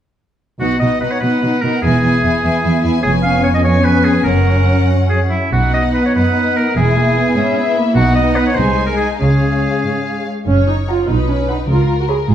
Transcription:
0.60 0.80 B1 soft
0.60 0.69 B2 soft
0.60 0.80 B3 soft
0.60 0.81 D#4 soft
0.60 0.79 F#4 medium
0.60 0.80 F#5 soft
0.80 0.89 B2 soft
0.80 1.02 B3 soft
0.80 1.02 D#4 soft
0.80 1.00 D#5 medium
0.80 1.01 F#5 soft
1.01 1.10 B2 soft
1.01 1.21 B3 soft
1.01 1.23 D#4 soft
1.01 1.13 B4 soft
1.01 1.22 F#5 soft
1.12 1.20 C#5 soft
1.21 1.30 B2 soft
1.21 1.41 B3 soft
1.21 1.44 D#4 soft
1.21 1.63 B4 medium
1.21 1.43 F#5 soft
1.42 1.51 B2 soft
1.42 1.62 B3 soft
1.42 1.63 D#4 soft
1.42 1.63 F#5 soft
1.61 1.71 B2 soft
1.61 1.83 B3 soft
1.61 1.83 D#4 soft
1.61 1.82 A#4 medium
1.61 1.84 F#5 soft
1.82 2.03 E1 soft
1.82 1.91 E2 soft
1.82 2.03 B3 soft
1.82 2.03 E4 soft
1.82 2.81 G#4 medium
1.82 2.03 G#5 soft
2.04 2.12 E2 soft
2.04 2.22 B3 soft
2.04 2.23 E4 soft
2.04 2.23 G#5 soft
2.23 2.31 E2 soft
2.23 2.43 B3 soft
2.23 2.42 E4 soft
2.23 2.43 G#5 soft
2.44 2.52 E2 soft
2.44 2.63 B3 soft
2.44 2.62 E4 soft
2.44 2.63 G#5 soft
2.63 2.72 E2 soft
2.63 2.83 B3 soft
2.63 2.81 E4 soft
2.63 2.84 G#5 soft
2.83 2.92 E2 soft
2.83 3.02 B3 soft
2.83 3.03 E4 soft
2.83 3.04 G#5 soft
3.03 3.42 F1 soft
3.03 4.23 F2 medium
3.03 3.60 B3 soft
3.03 3.60 C#4 soft
3.03 3.12 G#4 medium
3.03 3.61 G#5 soft
3.23 3.43 F5 medium
3.44 3.48 C#5 medium
3.55 3.64 D#5 medium
3.64 4.25 B3 soft
3.64 4.25 C#4 soft
3.64 3.86 C#5 medium
3.64 4.25 G#5 soft
3.85 4.06 B4 medium
4.05 4.23 G#4 medium
4.24 4.65 F#1 soft
4.24 5.30 F#2 soft
4.24 5.30 C#4 soft
4.24 5.33 C#4 soft
4.24 4.87 A#4 soft
4.24 5.32 F#5 soft
5.10 5.20 G#4 soft
5.30 5.52 E4 medium
5.52 5.92 B1 soft
5.52 6.12 B2 soft
5.52 6.74 B3 soft
5.52 6.12 D#4 soft
5.52 5.73 F#4 medium
5.52 6.12 F#5 soft
5.74 5.83 D#5 medium
5.94 6.05 B4 soft
6.06 6.15 C#5 medium
6.15 6.73 F#2 soft
6.15 6.76 D#4 soft
6.15 6.58 B4 medium
6.15 6.76 F#5 soft
6.56 6.76 A#4 medium
6.76 7.14 E1 medium
6.76 7.32 E2 medium
6.76 6.98 G#3 soft
6.76 7.36 E4 soft
6.76 7.75 G#4 medium
6.76 7.36 G#5 soft
6.97 7.17 A#3 soft
7.17 7.37 B3 soft
7.36 7.92 G#2 soft
7.36 7.57 C#4 soft
7.36 7.96 E4 soft
7.36 7.97 E5 soft
7.57 7.77 B3 soft
7.77 7.97 A#3 soft
7.95 8.35 B1 medium
7.95 8.53 B2 medium
7.95 8.58 B3 soft
7.95 8.56 D#4 soft
7.95 8.14 F#4 medium
7.95 8.57 F#5 soft
8.16 8.37 D#5 medium
8.36 8.46 B4 medium
8.47 8.56 C#5 medium
8.55 8.96 C2 soft
8.55 9.16 C3 soft
8.55 9.19 G#3 soft
8.55 9.19 D#4 soft
8.55 8.86 C5 medium
8.55 9.21 G#5 soft
8.86 8.97 A#4 soft
8.97 9.07 G#4 medium
9.20 9.60 C#2 soft
9.20 9.80 C#3 soft
9.20 10.25 G#3 soft
9.20 10.27 C#4 soft
9.20 10.24 G#4 soft
9.20 10.25 F5 soft
9.84 10.44 G#2 soft
10.47 10.96 F#1 soft
10.47 10.96 F#2 soft
10.47 10.67 C#4 medium
10.47 11.05 C#5 soft
10.67 10.75 D#4 soft
10.88 11.08 F4 soft
10.88 11.04 F#5 soft
10.88 11.04 A#5 soft
11.08 11.57 B1 soft
11.08 11.56 B2 soft
11.08 11.29 D#4 soft
11.08 11.69 B4 soft
11.29 11.49 C#4 soft
11.49 11.58 D#4 medium
11.49 11.64 F#5 soft
11.49 11.64 B5 soft
11.69 12.17 C#2 soft
11.69 12.17 C#3 soft
11.69 11.99 F4 medium
11.69 12.28 A#4 soft
12.00 12.04 F#4 soft
12.09 12.17 G#4 medium
12.09 12.24 C#5 soft
12.09 12.25 B5 soft
12.29 12.35 G#1 soft
12.29 12.35 G#2 soft
12.29 12.35 F4 medium
12.29 12.35 G#4 soft

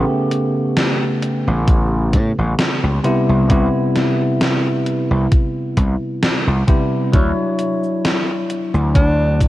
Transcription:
0.00 3.06 C#3 medium
0.00 3.06 A3 medium
0.00 3.05 B3 medium
0.00 3.06 G4 medium
0.31 closed hi-hat medium
0.77 snare loud
0.77 closed hi-hat medium
1.22 closed hi-hat medium
1.47 2.15 A1 medium
1.68 kick loud
1.68 closed hi-hat medium
2.13 2.31 A2 loud
2.13 kick medium
2.13 closed hi-hat medium
2.38 2.53 A1 medium
2.59 snare loud
2.59 closed hi-hat medium
2.84 2.99 C#2 medium
3.04 3.44 C3 medium
3.04 3.45 G3 medium
3.04 3.45 B3 medium
3.04 3.45 E4 medium
3.04 closed hi-hat medium
3.29 3.44 C2 loud
3.48 3.67 C2 medium
3.48 6.62 C3 medium
3.48 6.63 G3 medium
3.48 6.63 B3 medium
3.48 6.64 E4 medium
3.48 kick loud
3.48 closed hi-hat medium
3.96 snare medium
3.96 closed hi-hat medium
4.41 snare loud
4.41 closed hi-hat medium
4.86 closed hi-hat medium
5.11 5.26 C2 medium
5.32 kick loud
5.32 closed hi-hat medium
5.77 5.95 C2 medium
5.77 kick medium
5.77 closed hi-hat medium
6.23 snare loud
6.23 closed hi-hat medium
6.47 6.62 C2 medium
6.67 7.08 C3 medium
6.67 7.08 G3 medium
6.67 7.09 B3 medium
6.67 7.09 E4 medium
6.67 kick loud
6.67 closed hi-hat medium
7.12 7.31 D2 medium
7.12 9.48 F#3 medium
7.12 9.48 D4 medium
7.12 9.48 E4 medium
7.12 9.48 C#5 medium
7.12 kick loud
7.12 closed hi-hat medium
7.12 cabasa soft
7.59 closed hi-hat medium
7.59 cabasa medium
7.84 cabasa soft
8.05 snare loud
8.05 closed hi-hat medium
8.05 cabasa soft
8.50 closed hi-hat medium
8.50 cabasa medium
8.74 9.41 D2 medium
8.74 cabasa soft
8.95 9.48 D4 medium
8.95 kick loud
8.95 closed hi-hat medium
8.95 cabasa soft
9.41 9.48 A1 medium
9.41 kick medium
9.41 closed hi-hat medium
9.41 cabasa medium

